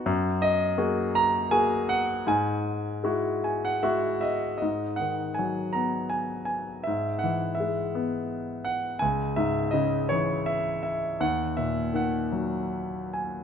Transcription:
<<
  \new Staff \with { instrumentName = "Grand piano" } { \time 3/4 \key gis \minor \tempo 4 = 81 << { r8 dis''4 ais''8 gis''8 fis''8 | gis''2 r8 e''8 | dis''8 fis''8 gis''8 ais''8 gis''8 gis''8 | e''8 fis''8 e''4 r8 fis''8 |
gis''8 e''8 dis''8 cis''8 e''8 e''8 | fis''8 e''8 fis''4 r8 gis''8 | } \\ { r2. | r4. gis''16 fis''16 e''8 dis''8 | r2. | r2. |
r2. | r2. | } >> }
  \new Staff \with { instrumentName = "Grand piano" } { \clef bass \time 3/4 \key gis \minor fis,4 <ais fis' gis'>4 <ais fis' gis'>4 | gis,4 <gis e' fis'>4 <gis e' fis'>4 | gis,8 dis8 fis8 b4. | gis,8 e8 gis8 b4. |
cis,8 gis,8 cis8 e4. | dis,8 ais,8 dis8 fis4. | }
>>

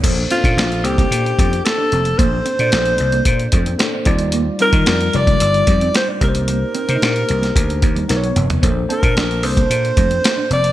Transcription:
<<
  \new Staff \with { instrumentName = "Alto saxophone" } { \time 4/4 \key bes \major \tempo 4 = 112 r8 f'4 g'4. a'4 | c''2. r4 | r8 bes'4 d''4. c''8 bes'8~ | bes'2.~ bes'8 r8 |
r8 bes'4 c''2 d''8 | }
  \new Staff \with { instrumentName = "Tine electric piano" } { \time 4/4 \key bes \major <bes d' a' c''>8 <bes des' d' a' c''>8. r16 <bes d' a' c''>4.~ <bes d' a' c''>16 r8. | <bes d' a' c''>8. <bes d' a' d''>4.~ <bes d' a' d''>16 r8 <bes d' a' c''>8 <g ees' f' d''>8~ | <g ees' f' d''>16 r16 <g ees' f' bes'>8. r16 <g ees' f' d''>4.~ <g ees' f' d''>16 r16 <bes ees' g' bes' c''>8~ | <bes ees' g' bes' c''>8 r16 <bes d' ees' g' c''>4.~ <bes d' ees' g' c''>16 r8 <b dis' ais' c'' cis''>8. r16 |
<bes d' a' c''>8 <bes d' c'' a''>8. r16 <bes d' a' c''>4.~ <bes d' a' c''>16 r8. | }
  \new Staff \with { instrumentName = "Clean electric guitar" } { \time 4/4 \key bes \major bes16 r16 c'16 r16 d'16 r8 bes16 r8 a16 c'16 r16 d'16 c'16 r16 | bes16 r16 c'16 r16 d'16 r8 bes16 r8 a16 c'16 r16 d'16 c'16 r16 | bes16 r16 c'16 r16 d'16 r8 bes16 r8 g16 c'16 r16 d'16 c'16 r16 | bes16 r16 c'16 r16 d'16 r8 bes16 r8 bes16 g16 r16 b16 b16 r16 |
bes16 r16 c'16 r16 d'16 r8 bes16 r8 a16 c'16 r16 d'16 c'16 r16 | }
  \new Staff \with { instrumentName = "Slap bass" } { \clef bass \time 4/4 \key bes \major bes,,8 r16 bes,16 bes,,8 c,8 bes,8 f,8 r8 f,,8 | bes,,8 r16 bes,16 bes,,8 c,8 bes,8 f,8 r8 ees,8~ | ees,8 r16 ees16 f,8 f,,8 g,,8 f,8 r8 c,8~ | c,8 r16 c16 bes,8 c,8 d,8 ees,8 b,,8 f,,8 |
bes,,8 r16 bes,16 bes,,8 c,8 bes,8 f,8 r8 f,,8 | }
  \new DrumStaff \with { instrumentName = "Drums" } \drummode { \time 4/4 <cymc hh bd>8 hh16 <hh bd>16 <hh sn>16 hh16 hh16 <hh bd>16 hh16 hh16 <hh bd>16 hh16 <hh sn>8 hh16 hh16 | <hh bd>8 hh16 hh16 <hh sn>16 hh16 hh16 hh16 <hh bd>16 hh16 <hh bd>16 hh16 <hh sn>8 <hh bd>16 hh16 | hh8 hh16 <hh bd>16 <hh sn>16 hh16 hh16 <hh bd>16 hh16 hh16 <hh bd>16 hh16 <hh sn>8 <hh bd>16 hh16 | hh8 hh16 hh16 <hh sn>16 hh16 hh16 <hh sn>16 <hh bd>16 hh16 <hh bd>16 hh16 <hh sn>16 hh16 <hh toml>16 <hh tomfh>16 |
<hh bd>8 hh16 <hh bd>16 <hh sn>16 hh16 hho16 <hh bd>16 hh16 hh16 <hh bd>16 hh16 <hh sn>8 hh16 hh16 | }
>>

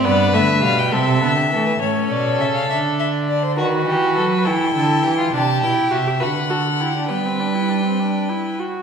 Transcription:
<<
  \new Staff \with { instrumentName = "Violin" } { \time 6/8 \key a \minor \tempo 4. = 68 d''8 e''8 f''16 g''16 e''4. | cis''8 d''8 e''16 f''16 e''8 e''8 d''16 c''16 | b'4. g''4. | \key g \major a''8 g''8 e''8 fis''4. |
g''2~ g''8 r8 | }
  \new Staff \with { instrumentName = "Violin" } { \time 6/8 \key a \minor b'4. a'8. g'16 a'16 b'16 | a'2. | fis'8 g'8 a'16 b'16 a'8 a'8 g'16 f'16 | \key g \major g'4. b'8 a'8 g'8 |
b'2~ b'8 r8 | }
  \new Staff \with { instrumentName = "Viola" } { \time 6/8 \key a \minor b8 a8 g8 c'8 b8 a8 | cis'4. d'4. | fis'4. e'4. | \key g \major d'8 e'8 fis'16 g'16 fis'8 fis'8 e'16 d'16 |
b16 c'16 d'16 e'16 d'16 c'16 d'8 e'8 fis'8 | }
  \new Staff \with { instrumentName = "Cello" } { \clef bass \time 6/8 \key a \minor g,8 d8 b,8 c8 d8 e8 | a,8 b,8 cis8 d4. | dis8 e8 fis8 e8 d8 e8 | \key g \major c8 b,8 c8 d4. |
g2~ g8 r8 | }
>>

